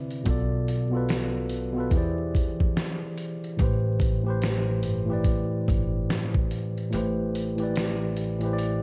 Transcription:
Already playing: D3 C4 E4 B4 D5
0.11 closed hi-hat
0.23 B1 B2 B3 F4, kick, closed hi-hat
0.29 A4 D5
0.68 closed hi-hat
0.90 B2 B3 F4
0.95 A4 B4
1.09 snare, closed hi-hat
1.50 closed hi-hat
1.73 B2 B3 F4
1.78 A4 B4
1.90 E2 E3 E4 G4, kick, closed hi-hat
1.95 G#4 C5 D5
2.35 kick, closed hi-hat
2.60 F2, kick
2.77 snare, closed hi-hat
3.17 closed hi-hat
3.44 closed hi-hat
3.57 A1 A2 E3 G4, kick, closed hi-hat
3.62 B4 C5
4.00 kick, closed hi-hat
4.23 A2 E3 G4
4.28 B4 C5
4.42 snare, closed hi-hat
4.83 G1, closed hi-hat
5.06 A2 E3 G4
5.11 B4 D5
5.24 kick, closed hi-hat
5.68 G1, kick, closed hi-hat
6.10 snare, closed hi-hat
6.34 kick
6.51 closed hi-hat
6.78 closed hi-hat
6.90 A2 E3 G4, closed hi-hat
6.94 A1 B4 C5
7.35 closed hi-hat
7.56 A2 E3 G4, closed hi-hat
7.62 B4 D5
7.76 snare, closed hi-hat
8.17 closed hi-hat
8.39 A2 E3 G4, closed hi-hat
8.45 B4 C5
8.53 D5
8.58 closed hi-hat

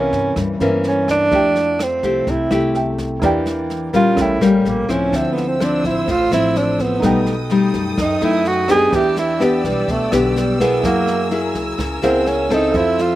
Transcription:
Already playing: C3 E3 A#3 C#4 A#4 C5 E5
0.13 G2, kick, snare
0.36 G2, kick, cross-stick, snare
0.59 G2 E3 A#3 C#4 A#4 C5 E5, snare
0.84 C#4, snare
1.08 D4, kick, cross-stick, snare
1.31 F2 F3 A3 E4 G4 A4 E5, kick, snare
1.35 G5
1.56 snare
1.79 C4, cross-stick, snare
2.03 C2 A3 E4 G4, kick, snare
2.27 C2 C3 E4, kick, snare
2.51 C2 A3 E4 G4, cross-stick, snare
2.74 A4 E5 G5, snare
2.98 kick, snare
3.20 E2 E3 A#3 D4 E4 A#4, kick, cross-stick, snare
3.24 G4 D5 G5
3.46 snare
3.70 snare
3.93 A#2 G3 A#3 C#4 F4, kick, snare
4.15 A1 A2 C#4 A4 A#4, kick, cross-stick, snare
4.21 E4 G5
4.41 A1 G3 A#3 C#4, snare
4.65 A#1 A#3, snare
4.88 C#2 F3 C4 C#4 E4, kick, cross-stick, snare
5.10 D2 D3 D4 C5 E6, kick, snare
5.15 C4 E5
5.32 B3
5.37 snare
5.48 C4
5.60 F3 C4 D4 E4, cross-stick, snare
5.84 A1 E4, kick, snare
6.08 A1 A2 F4, kick, snare
6.32 A1 F3 C4 E4, cross-stick, snare
6.55 D4, snare
6.79 B3, kick, snare
7.00 B1 B2 G3 D#4 A4 G5 D#6, kick, cross-stick, snare
7.04 A3 D#4 B4 G5
7.26 snare
7.50 G3 A3 D#4, snare
7.74 F#2, kick, snare
7.97 F#2 D#4, kick, cross-stick, snare
8.21 F#2 A3 D#4 E4, snare
8.45 F#4, snare
8.68 B3 D4 D#4 G4 G#4 A4 B4 G5, kick, cross-stick, snare
8.90 E2 E3 D4 G4 B4 D5 E6, kick, snare
8.95 G4 E5
9.16 E4, snare
9.40 B3 D4 G4, cross-stick, snare
9.64 B1 G3, kick, snare
9.88 B1 B2 A3, kick, snare
10.12 B1 D3 B3 D4 G4, cross-stick, snare
10.36 G3, snare
10.60 A#3 B3 E4 G#4, kick, snare
10.80 F#2 F#3 E4 G#4 A#4 G#5, kick, cross-stick, snare
10.85 A#3 A#4 F#5
11.07 snare
11.31 A#3 E4 G#4, snare
11.55 C#2, kick, snare
11.78 C#2 C#3, kick, cross-stick, snare
12.02 C#2 A#3 C4 E4 G#4 A#4 F#5, snare
12.26 C#4, snare
12.50 C4 D#4 E4 A4, kick, cross-stick, snare
12.71 F2 F3 A4 E5, kick, snare
12.75 E4 F4 C5 E5
12.98 F4, snare

